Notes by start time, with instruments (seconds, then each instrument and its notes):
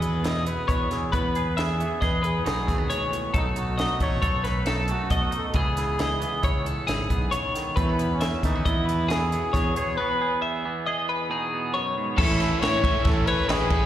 Already playing: fingered electric bass E2, clean electric guitar E2 E3 B3 E4, trumpet G#4
0.02 clean electric guitar B4, closed hi-hat
0.23 clean electric guitar B2 E4 G#4, trumpet D#5, snare, closed hi-hat
0.46 clean electric guitar B3, trumpet B4, closed hi-hat
0.68 clean electric guitar E2 B3 C#5, fingered electric bass E2, kick, closed hi-hat
0.91 clean electric guitar E4, trumpet G#4, snare, closed hi-hat
1.12 clean electric guitar E2 B3 B4, fingered electric bass E2, trumpet B4, kick, closed hi-hat
1.35 clean electric guitar G#4, closed hi-hat
1.57 trumpet G#4, clean electric guitar E5, snare, closed hi-hat
1.79 clean electric guitar E3 B3, closed hi-hat
2.01 fingered electric bass E2, clean electric guitar G#4 D#5, trumpet B4, kick, snare, closed hi-hat
2.23 trumpet G#4, clean electric guitar B4, closed hi-hat
2.44 fingered electric bass B1, clean electric guitar B2 D#4 G#4, snare, closed hi-hat
2.67 fingered electric bass D#2, clean electric guitar A3, kick, snare, closed hi-hat
2.78 clean electric guitar B3
2.89 clean electric guitar G#2 C#5, closed hi-hat
3.10 clean electric guitar A2, closed hi-hat
3.33 fingered electric bass B1, clean electric guitar B2 A3 A4, trumpet D#4, kick, closed hi-hat
3.56 clean electric guitar D#4, trumpet F#4, closed hi-hat
3.78 clean electric guitar D#4 D#5, snare, closed hi-hat
4.00 fingered electric bass A1, clean electric guitar F#3 A3, trumpet C#5, kick, closed hi-hat
4.22 fingered electric bass B1, clean electric guitar A4 C#5, kick, closed hi-hat
4.44 clean electric guitar B4, trumpet B4, snare, closed hi-hat
4.66 clean electric guitar F#2 D#4 A4, trumpet A4, snare, closed hi-hat
4.88 clean electric guitar A3, closed hi-hat
4.92 trumpet F#4
5.10 fingered electric bass B1, clean electric guitar B2 A3 D#5, kick, closed hi-hat
5.31 clean electric guitar D#4, closed hi-hat
5.36 trumpet A4
5.49 trumpet A4
5.54 fingered electric bass C#2, clean electric guitar C#3 E3 B3 E4 G#4, trumpet G#4, kick, closed hi-hat
5.77 clean electric guitar E4, snare, closed hi-hat
5.99 clean electric guitar E4 D#5, snare, closed hi-hat
6.20 clean electric guitar E3 B3, closed hi-hat
6.43 fingered electric bass C#2, clean electric guitar E4 C#5, kick, closed hi-hat
6.66 clean electric guitar A4, closed hi-hat
6.87 fingered electric bass G#1, clean electric guitar G#2 E4 G#4, snare, closed hi-hat
7.10 fingered electric bass B1, clean electric guitar B3, kick, closed hi-hat
7.31 clean electric guitar C#3 C#5, closed hi-hat
7.54 clean electric guitar D#3, snare, closed hi-hat
7.76 clean electric guitar E2 A3 B4, fingered electric bass E2, trumpet E4, kick, closed hi-hat
7.89 clean electric guitar B3
7.99 clean electric guitar B3, closed hi-hat
8.12 trumpet C#4
8.21 clean electric guitar E4 E5, snare, closed hi-hat
8.43 fingered electric bass D#2, clean electric guitar E3 A3, trumpet D#4, kick, snare, closed hi-hat
8.55 clean electric guitar B3
8.65 fingered electric bass E2, clean electric guitar B3 D#5, trumpet E4, kick, closed hi-hat
8.86 clean electric guitar B4, closed hi-hat
9.09 clean electric guitar B2 E4 G#4, trumpet G#4, snare, closed hi-hat
9.32 clean electric guitar B3, closed hi-hat
9.53 clean electric guitar E2 B3 C#5, fingered electric bass E2, kick, snare, closed hi-hat
9.75 clean electric guitar G#4, trumpet C#5, closed hi-hat
9.97 clean electric guitar E2 B3 B4, trumpet B4
10.21 clean electric guitar G#4
10.42 clean electric guitar E5
10.65 clean electric guitar E3 B3
10.86 clean electric guitar G#4 D#5
11.09 clean electric guitar B4
11.30 clean electric guitar B2 D#4 G#4
11.54 clean electric guitar B3
11.74 clean electric guitar F#2 C#5
11.97 clean electric guitar G#2
12.17 fingered electric bass A1, overdriven electric guitar A2 E3 A3 C#4, trumpet E4, clean electric guitar A4, kick, crash
12.21 overdriven electric guitar E4
12.40 snare, ride
12.60 fingered electric bass A2, trumpet C#5, clean electric guitar C#5, snare, ride
12.82 overdriven electric guitar A2 E3 A3 C#4 E4, clean electric guitar E5, kick, ride
13.05 fingered electric bass A1, trumpet A4, kick, snare, ride
13.27 trumpet B4, clean electric guitar C#5, ride
13.48 fingered electric bass A1, overdriven electric guitar A2 E3 A3 C#4, trumpet G#4, clean electric guitar B4, snare, ride
13.52 overdriven electric guitar E4
13.70 clean electric guitar A4, kick, ride